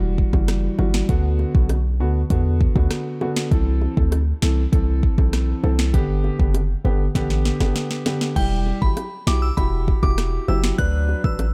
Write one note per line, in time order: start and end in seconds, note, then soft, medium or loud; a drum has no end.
0.00 0.24 E1 medium
0.00 0.30 E3 medium
0.00 0.30 G3 medium
0.00 0.30 F#4 loud
0.18 kick medium
0.33 0.69 F#1 medium
0.33 0.75 E3 medium
0.33 0.75 G3 medium
0.33 0.75 F#4 medium
0.33 kick medium
0.33 high bongo medium
0.48 cross-stick loud
0.48 snare medium
0.48 closed hi-hat medium
0.78 1.03 G1 loud
0.78 1.06 E3 medium
0.78 1.07 G3 medium
0.78 1.07 F#4 medium
0.78 high bongo medium
0.78 low bongo medium
0.94 finger snap medium
0.94 snare loud
1.09 1.45 D2 loud
1.09 1.51 D3 loud
1.09 1.51 B3 medium
1.09 1.51 F#4 loud
1.09 kick loud
1.09 closed hi-hat medium
1.39 high bongo soft
1.54 2.02 B1 medium
1.54 1.73 D3 medium
1.54 1.74 B3 medium
1.54 1.74 F#4 medium
1.54 kick medium
1.69 cross-stick medium
1.69 closed hi-hat medium
1.69 high bongo medium
2.00 2.24 D2 loud
2.00 2.19 D3 medium
2.00 2.19 B3 medium
2.00 2.19 F#4 medium
2.30 2.66 E2 loud
2.30 2.72 D3 medium
2.30 2.72 B3 medium
2.30 2.72 F#4 loud
2.30 kick medium
2.30 closed hi-hat medium
2.61 kick medium
2.76 2.88 D2 medium
2.76 3.17 D3 medium
2.76 3.18 B3 medium
2.76 3.18 F#4 medium
2.76 kick medium
2.76 high bongo medium
2.91 cross-stick loud
2.91 snare medium
2.91 closed hi-hat medium
3.21 3.49 D3 medium
3.21 3.49 B3 medium
3.21 3.49 F#4 medium
3.21 high bongo medium
3.21 low bongo medium
3.36 finger snap medium
3.36 snare loud
3.51 3.87 C2 loud
3.51 3.93 E3 loud
3.51 3.93 C4 medium
3.51 3.93 A4 loud
3.51 kick loud
3.51 closed hi-hat medium
3.82 high bongo soft
3.97 4.33 D2 loud
3.97 4.16 E3 medium
3.97 4.16 C4 medium
3.97 4.16 A4 medium
3.97 kick medium
4.12 cross-stick medium
4.12 closed hi-hat medium
4.12 high bongo medium
4.42 4.66 C2 loud
4.42 4.61 E3 medium
4.42 4.61 C4 medium
4.42 4.61 A4 medium
4.42 finger snap medium
4.42 snare loud
4.72 5.09 C2 medium
4.72 5.14 E3 medium
4.72 5.14 C4 medium
4.72 5.14 A4 loud
4.72 kick medium
4.72 closed hi-hat medium
5.03 kick medium
5.18 5.54 B1 medium
5.18 5.60 E3 medium
5.18 5.60 C4 medium
5.18 5.60 A4 medium
5.18 kick loud
5.18 high bongo medium
5.33 cross-stick loud
5.33 snare medium
5.33 closed hi-hat medium
5.63 5.95 C2 medium
5.63 5.91 E3 medium
5.63 5.91 C4 medium
5.63 5.92 A4 medium
5.63 high bongo medium
5.63 low bongo medium
5.79 finger snap medium
5.79 snare loud
5.93 6.30 G1 loud
5.93 6.35 D3 loud
5.93 6.36 B3 medium
5.93 6.36 G4 loud
5.93 kick loud
5.93 closed hi-hat medium
6.24 high bongo soft
6.39 6.76 F#1 medium
6.39 6.58 D3 medium
6.39 6.58 B3 medium
6.39 6.58 G4 medium
6.39 kick medium
6.54 closed hi-hat medium
6.54 high bongo medium
6.84 7.09 G1 loud
6.84 7.04 D3 medium
6.84 7.04 B3 medium
6.84 7.04 G4 medium
6.84 low bongo medium
7.15 7.51 A1 medium
7.15 7.57 D3 loud
7.15 7.57 B3 medium
7.15 7.57 G4 loud
7.15 kick medium
7.15 snare medium
7.15 closed hi-hat medium
7.30 snare medium
7.45 snare medium
7.60 7.72 G1 medium
7.60 8.02 D3 medium
7.60 8.02 B3 medium
7.60 8.02 G4 medium
7.60 snare medium
7.60 high bongo medium
7.76 snare medium
7.76 closed hi-hat medium
7.91 snare medium
8.06 8.34 D3 medium
8.06 8.34 B3 medium
8.06 8.34 G4 medium
8.06 snare loud
8.06 high bongo medium
8.06 low bongo medium
8.21 snare medium
8.36 8.72 E1 loud
8.36 8.78 G3 loud
8.36 8.78 E4 medium
8.36 8.78 G4 loud
8.36 8.59 G5 loud
8.36 kick loud
8.36 closed hi-hat medium
8.36 crash loud
8.67 high bongo soft
8.81 8.94 G1 medium
8.81 9.01 F#3 medium
8.81 9.01 E4 medium
8.81 9.01 G4 medium
8.81 8.93 B5 medium
8.81 kick medium
8.97 cross-stick medium
8.97 closed hi-hat medium
8.97 high bongo medium
9.27 9.51 B1 medium
9.27 9.46 F#3 medium
9.27 9.46 E4 medium
9.27 9.46 G4 medium
9.27 9.39 D6 medium
9.27 finger snap medium
9.27 snare loud
9.42 9.53 E6 medium
9.57 9.94 E1 loud
9.57 9.99 E4 medium
9.57 9.99 F#4 medium
9.57 10.00 G4 loud
9.57 9.68 B5 medium
9.57 kick loud
9.57 closed hi-hat medium
9.57 high bongo medium
9.88 kick medium
9.88 high bongo medium
10.03 10.39 E1 medium
10.03 10.45 E4 medium
10.03 10.45 F#4 medium
10.03 10.45 G4 medium
10.03 10.14 D6 medium
10.03 kick medium
10.03 high bongo medium
10.18 cross-stick loud
10.18 snare medium
10.18 closed hi-hat medium
10.48 10.72 F#1 medium
10.48 10.76 F#3 medium
10.48 10.76 E4 medium
10.48 10.76 G4 medium
10.48 10.60 E6 medium
10.48 high bongo medium
10.48 low bongo medium
10.64 finger snap medium
10.64 snare loud
10.78 11.15 D2 loud
10.78 11.20 F#3 loud
10.78 11.21 D4 medium
10.78 11.21 B4 loud
10.78 11.01 F#6 loud
10.78 kick loud
10.78 closed hi-hat medium
11.09 high bongo medium
11.24 11.54 A1 loud
11.24 11.43 F#3 medium
11.24 11.43 D4 medium
11.24 11.43 B4 medium
11.24 11.35 E6 medium
11.24 kick medium
11.39 cross-stick medium
11.39 closed hi-hat medium
11.39 high bongo medium